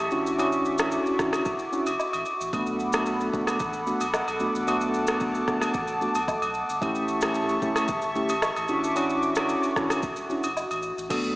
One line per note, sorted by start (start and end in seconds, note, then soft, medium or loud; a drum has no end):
0.00 0.10 G4 medium
0.00 2.49 E5 medium
0.00 0.10 C#6 medium
0.11 0.98 A1 medium
0.11 0.37 C#4 medium
0.11 0.37 D4 medium
0.11 0.37 E4 medium
0.11 2.51 F#4 medium
0.11 0.37 F#4 medium
0.11 2.50 C#6 medium
0.11 6.78 D6 medium
0.11 shaker soft
0.26 shaker medium
0.38 0.76 C#4 medium
0.38 0.76 D4 medium
0.38 0.76 E4 medium
0.38 0.76 F#4 loud
0.38 high agogo medium
0.38 shaker medium
0.52 shaker medium
0.65 shaker medium
0.78 1.16 C#4 medium
0.78 1.16 D4 medium
0.78 1.16 E4 medium
0.78 1.16 F#4 medium
0.78 cross-stick loud
0.78 high agogo medium
0.78 shaker loud
0.92 shaker medium
1.06 shaker soft
1.19 1.41 A1 medium
1.19 1.44 C#4 medium
1.19 1.44 D4 medium
1.19 1.44 E4 medium
1.19 1.44 F#4 medium
1.19 kick medium
1.19 cross-stick medium
1.19 shaker medium
1.33 cross-stick medium
1.33 high agogo medium
1.33 shaker medium
1.45 1.67 E1 medium
1.45 kick medium
1.45 shaker medium
1.59 shaker medium
1.72 1.89 C#4 medium
1.72 1.89 D4 medium
1.72 1.89 E4 medium
1.72 1.89 F#4 medium
1.72 shaker medium
1.86 1.97 F#1 loud
1.86 high agogo medium
1.86 shaker medium
1.99 low woodblock medium
1.99 shaker medium
2.13 2.24 A1 medium
2.13 high agogo medium
2.13 shaker medium
2.25 shaker soft
2.40 2.51 A1 medium
2.40 shaker medium
2.53 3.29 B1 loud
2.53 2.90 A3 medium
2.53 2.90 B3 medium
2.53 2.90 D4 medium
2.53 2.91 F#4 loud
2.53 6.78 A4 medium
2.53 6.78 F#5 medium
2.53 4.65 B5 medium
2.53 kick loud
2.53 high agogo medium
2.53 shaker medium
2.66 shaker medium
2.80 shaker medium
2.93 3.30 A3 medium
2.93 3.30 B3 medium
2.93 3.30 D4 medium
2.93 3.30 F#4 medium
2.93 cross-stick loud
2.93 high agogo medium
2.93 shaker loud
3.06 shaker medium
3.20 shaker soft
3.33 3.62 F#1 medium
3.33 3.58 A3 medium
3.33 3.58 B3 medium
3.33 3.58 D4 medium
3.33 3.58 F#4 medium
3.33 kick medium
3.33 shaker soft
3.47 cross-stick medium
3.47 high agogo medium
3.47 shaker medium
3.60 3.93 A1 medium
3.60 kick loud
3.60 shaker medium
3.73 shaker medium
3.87 4.03 A3 medium
3.87 4.03 B3 medium
3.87 4.03 D4 medium
3.87 4.03 F#4 medium
3.87 shaker medium
4.01 4.22 B1 medium
4.01 high agogo medium
4.01 shaker medium
4.14 cross-stick loud
4.14 low woodblock medium
4.14 shaker medium
4.28 4.49 B1 medium
4.28 high agogo medium
4.28 shaker medium
4.40 4.65 A3 medium
4.40 4.65 B3 medium
4.40 4.65 D4 medium
4.40 4.65 F#4 medium
4.40 shaker soft
4.54 4.69 A1 medium
4.54 shaker medium
4.67 5.44 B1 loud
4.67 5.05 A3 medium
4.67 5.05 B3 medium
4.67 5.05 D4 medium
4.67 5.05 F#4 loud
4.67 6.80 A5 medium
4.67 high agogo medium
4.67 shaker medium
4.81 shaker medium
4.94 shaker medium
5.07 5.45 A3 medium
5.07 5.45 B3 medium
5.07 5.45 D4 medium
5.07 5.45 F#4 medium
5.07 cross-stick loud
5.07 high agogo medium
5.07 shaker loud
5.20 kick medium
5.20 shaker medium
5.35 shaker soft
5.47 5.69 F#1 medium
5.47 5.72 A3 medium
5.47 5.72 B3 medium
5.47 5.72 D4 medium
5.47 5.73 F#4 medium
5.47 kick loud
5.47 cross-stick medium
5.47 shaker medium
5.61 cross-stick medium
5.61 high agogo medium
5.61 shaker medium
5.74 6.07 A1 loud
5.74 kick loud
5.74 shaker medium
5.88 shaker medium
6.01 6.17 A3 medium
6.01 6.18 B3 medium
6.01 6.18 D4 medium
6.01 6.18 F#4 medium
6.01 shaker medium
6.15 6.37 B1 medium
6.15 high agogo medium
6.15 shaker medium
6.28 kick medium
6.28 low woodblock medium
6.28 shaker medium
6.42 6.64 B1 medium
6.42 high agogo medium
6.42 shaker medium
6.54 shaker soft
6.69 6.83 G1 medium
6.69 shaker medium
6.81 7.58 A1 loud
6.81 7.19 A3 medium
6.81 7.19 C#4 medium
6.81 7.19 E4 medium
6.81 8.67 G4 medium
6.81 7.19 G4 loud
6.81 11.06 E5 medium
6.81 8.67 A5 medium
6.81 11.06 C#6 medium
6.81 kick loud
6.81 high agogo medium
6.81 shaker medium
6.95 shaker medium
7.08 shaker medium
7.21 7.59 A3 medium
7.21 7.59 C#4 medium
7.21 7.59 E4 medium
7.21 7.59 G4 medium
7.21 cross-stick loud
7.21 high agogo medium
7.21 shaker loud
7.35 shaker medium
7.49 shaker soft
7.62 7.84 F#1 medium
7.62 7.87 A3 medium
7.62 7.87 C#4 medium
7.62 7.87 E4 medium
7.62 7.87 G4 medium
7.62 kick medium
7.62 shaker soft
7.76 cross-stick medium
7.76 high agogo medium
7.76 shaker medium
7.88 8.31 G1 loud
7.88 kick loud
7.88 shaker medium
8.02 shaker medium
8.15 8.32 A3 medium
8.15 8.32 C#4 medium
8.15 8.32 E4 medium
8.15 8.32 G4 medium
8.15 shaker medium
8.29 8.51 A1 medium
8.29 high agogo medium
8.29 shaker loud
8.42 cross-stick loud
8.42 low woodblock medium
8.42 shaker medium
8.56 8.67 A1 loud
8.56 high agogo medium
8.56 shaker medium
8.68 9.55 A1 loud
8.68 8.94 C#4 medium
8.68 8.94 D4 medium
8.68 8.94 E4 medium
8.68 11.08 F#4 medium
8.68 8.94 F#4 medium
8.68 11.08 D6 medium
8.68 shaker soft
8.84 shaker medium
8.96 9.33 C#4 medium
8.96 9.33 D4 medium
8.96 9.33 E4 medium
8.96 9.33 F#4 loud
8.96 high agogo medium
8.96 shaker medium
9.10 shaker medium
9.23 shaker medium
9.35 9.73 C#4 medium
9.35 9.73 D4 medium
9.35 9.73 E4 medium
9.35 9.73 F#4 medium
9.35 cross-stick loud
9.35 high agogo medium
9.35 shaker loud
9.49 shaker medium
9.63 shaker soft
9.76 10.05 A1 medium
9.76 10.01 C#4 medium
9.76 10.01 D4 medium
9.76 10.01 E4 medium
9.76 10.01 F#4 medium
9.76 kick medium
9.76 cross-stick medium
9.76 shaker medium
9.90 cross-stick medium
9.90 high agogo medium
9.90 shaker medium
10.03 10.45 E1 loud
10.03 kick loud
10.03 shaker medium
10.16 shaker medium
10.30 10.46 C#4 medium
10.30 10.46 D4 medium
10.30 10.46 E4 medium
10.30 10.46 F#4 medium
10.30 shaker medium
10.44 10.65 F#1 medium
10.44 high agogo medium
10.44 shaker medium
10.57 low woodblock medium
10.57 shaker medium
10.71 10.92 A1 medium
10.71 high agogo medium
10.71 shaker medium
10.82 shaker medium
10.97 11.08 A1 medium
10.97 shaker medium
11.10 11.36 B1 loud
11.10 11.36 A3 medium
11.10 11.36 B3 medium
11.10 11.36 D4 medium
11.10 11.36 F#4 medium
11.10 11.36 A4 loud
11.10 kick loud
11.10 crash medium
11.10 high agogo medium
11.10 shaker medium
11.24 shaker medium